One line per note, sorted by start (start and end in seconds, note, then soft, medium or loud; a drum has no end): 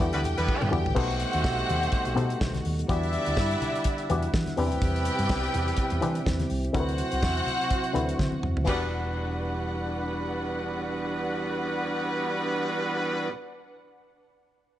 0.00 0.10 E2 medium
0.00 0.96 D3 medium
0.00 0.62 E3 medium
0.00 0.95 G3 medium
0.00 0.62 B3 medium
0.00 0.93 E4 medium
0.00 0.63 E4 medium
0.00 0.63 G4 medium
0.00 0.95 G4 medium
0.00 0.95 A4 medium
0.00 0.63 D5 medium
0.00 0.95 G5 medium
0.00 kick loud
0.13 0.25 D2 medium
0.13 0.20 G3 loud
0.13 0.20 B3 medium
0.13 0.20 F#4 loud
0.13 0.20 B4 loud
0.13 closed hi-hat medium
0.24 0.34 E2 loud
0.24 closed hi-hat medium
0.24 muted conga medium
0.24 low conga medium
0.37 0.46 E2 medium
0.37 0.70 G3 loud
0.37 0.70 B3 loud
0.37 0.70 G4 loud
0.37 0.70 B4 loud
0.37 closed hi-hat soft
0.48 kick loud
0.48 high tom medium
0.48 high conga medium
0.62 0.70 G2 loud
0.62 mid tom medium
0.62 high conga medium
0.71 0.82 E2 medium
0.71 0.93 E3 medium
0.71 0.93 B3 medium
0.71 0.93 F#4 medium
0.71 0.93 G4 medium
0.71 0.93 D5 medium
0.71 mid tom medium
0.86 0.94 A1 medium
0.86 floor tom loud
0.86 high conga medium
0.95 1.23 B1 loud
0.95 1.78 B2 loud
0.95 2.87 B2 medium
0.95 2.87 G3 medium
0.95 2.87 A3 medium
0.95 2.62 A3 medium
0.95 1.79 B3 medium
0.95 2.62 C4 medium
0.95 1.79 D#4 medium
0.95 2.87 D#4 medium
0.95 2.62 F#4 loud
0.95 1.79 G4 medium
0.95 2.62 G4 loud
0.95 1.79 A4 medium
0.95 1.79 C5 loud
0.95 2.62 C5 loud
0.95 2.62 F#5 loud
0.95 kick loud
0.95 crash loud
0.95 muted conga medium
1.10 closed hi-hat soft
1.20 closed hi-hat medium
1.33 1.42 D#2 medium
1.33 closed hi-hat soft
1.44 1.62 B1 loud
1.44 kick loud
1.44 snare loud
1.44 high conga medium
1.59 closed hi-hat soft
1.69 1.86 D#2 medium
1.69 closed hi-hat medium
1.69 low conga medium
1.83 closed hi-hat medium
1.92 kick loud
1.92 closed hi-hat medium
2.05 2.14 B1 medium
2.05 closed hi-hat medium
2.15 2.78 B2 medium
2.15 2.34 B2 loud
2.15 2.79 B3 medium
2.15 2.79 D#4 medium
2.15 2.79 G4 medium
2.15 2.79 A4 medium
2.15 2.79 C5 medium
2.15 closed hi-hat medium
2.15 muted conga medium
2.15 low conga medium
2.30 closed hi-hat soft
2.41 2.58 B1 loud
2.41 kick loud
2.41 snare loud
2.41 high conga medium
2.54 snare soft
2.54 closed hi-hat soft
2.54 high conga medium
2.65 2.82 D#2 medium
2.65 open hi-hat medium
2.79 closed hi-hat soft
2.88 3.16 E2 loud
2.88 4.57 D3 medium
2.88 3.72 E3 medium
2.88 6.71 G3 medium
2.88 3.72 B3 medium
2.88 4.30 B3 loud
2.88 4.30 D4 medium
2.88 4.30 E4 loud
2.88 8.64 E4 medium
2.88 3.72 F#4 medium
2.88 4.31 G4 medium
2.88 3.72 G4 medium
2.88 4.30 D5 loud
2.88 3.72 D5 loud
2.88 4.30 E5 loud
2.88 4.57 F#5 medium
2.88 kick loud
2.88 closed hi-hat medium
2.88 muted conga medium
3.03 closed hi-hat soft
3.13 closed hi-hat medium
3.26 3.34 D2 medium
3.26 closed hi-hat soft
3.37 3.54 G2 loud
3.37 kick loud
3.37 snare loud
3.37 high conga medium
3.51 closed hi-hat medium
3.62 closed hi-hat medium
3.62 low conga medium
3.75 closed hi-hat soft
3.84 kick loud
3.84 closed hi-hat medium
3.98 closed hi-hat medium
4.09 4.27 E2 medium
4.09 4.56 E3 medium
4.09 4.58 B3 medium
4.09 4.58 F#4 medium
4.09 4.57 G4 medium
4.09 4.58 D5 medium
4.09 closed hi-hat medium
4.09 muted conga medium
4.09 low conga medium
4.22 closed hi-hat soft
4.34 4.43 E3 medium
4.34 kick loud
4.34 snare loud
4.34 high conga medium
4.46 snare soft
4.46 closed hi-hat soft
4.46 high conga medium
4.57 4.72 E2 loud
4.57 8.64 C3 medium
4.57 5.40 E3 medium
4.57 6.46 G3 medium
4.57 6.46 B3 medium
4.57 5.41 C4 medium
4.57 8.64 C4 medium
4.57 5.41 D4 medium
4.57 6.47 E4 medium
4.57 6.46 G4 loud
4.57 5.41 G4 medium
4.57 6.46 B4 medium
4.57 5.41 B4 loud
4.57 6.47 G5 loud
4.57 open hi-hat medium
4.72 4.79 D2 medium
4.72 closed hi-hat soft
4.81 5.08 E2 loud
4.81 kick loud
4.81 closed hi-hat medium
4.81 muted conga medium
4.96 closed hi-hat medium
5.05 closed hi-hat medium
5.19 5.27 G2 medium
5.19 closed hi-hat medium
5.29 5.47 C2 loud
5.29 kick loud
5.29 snare loud
5.29 high conga medium
5.44 closed hi-hat medium
5.54 5.71 E2 medium
5.54 closed hi-hat medium
5.54 low conga medium
5.68 closed hi-hat medium
5.77 kick loud
5.77 closed hi-hat medium
5.90 5.99 E2 loud
5.90 closed hi-hat soft
6.01 6.64 E3 medium
6.01 6.19 E3 loud
6.01 6.65 C4 medium
6.01 6.65 D4 medium
6.01 6.65 G4 medium
6.01 6.65 B4 loud
6.01 closed hi-hat medium
6.01 muted conga medium
6.01 low conga medium
6.15 closed hi-hat soft
6.26 6.44 E2 medium
6.26 kick loud
6.26 snare loud
6.26 high conga medium
6.40 snare soft
6.40 closed hi-hat soft
6.40 high conga medium
6.50 6.68 C2 medium
6.50 open hi-hat medium
6.64 closed hi-hat soft
6.73 7.01 D2 loud
6.73 7.57 D3 medium
6.73 8.65 F#3 medium
6.73 8.40 A3 medium
6.73 7.57 C4 medium
6.73 8.40 C4 medium
6.73 7.57 E4 medium
6.73 7.57 F#4 medium
6.73 8.40 F#4 medium
6.73 8.40 F#4 loud
6.73 6.81 A#4 medium
6.73 8.40 C5 medium
6.73 8.40 F#5 loud
6.73 kick loud
6.73 closed hi-hat medium
6.73 muted conga medium
6.80 7.60 B4 loud
6.89 closed hi-hat soft
6.98 closed hi-hat medium
7.12 7.20 C2 medium
7.12 closed hi-hat medium
7.23 7.40 E2 medium
7.23 kick loud
7.23 snare loud
7.23 high conga medium
7.37 closed hi-hat soft
7.47 closed hi-hat medium
7.47 low conga medium
7.61 closed hi-hat soft
7.71 kick loud
7.71 closed hi-hat medium
7.84 closed hi-hat soft
7.93 8.12 D2 medium
7.93 8.57 D3 medium
7.93 8.57 C4 medium
7.93 8.57 E4 medium
7.93 8.57 F#4 medium
7.93 8.58 B4 medium
7.93 closed hi-hat medium
7.93 muted conga medium
7.93 low conga medium
8.09 closed hi-hat soft
8.19 8.29 D3 loud
8.19 kick loud
8.19 snare medium
8.19 high conga medium
8.32 high conga medium
8.43 8.53 E2 medium
8.43 mid tom medium
8.57 8.65 D2 medium
8.57 floor tom loud
8.64 13.28 E3 medium
8.64 13.30 E3 medium
8.64 13.30 G3 medium
8.64 13.30 B3 medium
8.64 13.29 B3 loud
8.64 13.29 D4 medium
8.64 13.30 D4 medium
8.64 13.29 F#4 medium
8.64 13.32 F#4 medium
8.64 13.29 B4 medium
8.64 13.29 B4 loud
8.64 13.29 F#5 loud
8.64 13.30 F#5 medium
8.64 kick loud
8.64 crash medium
8.64 muted conga medium
8.69 13.33 G4 medium
8.69 13.35 D5 loud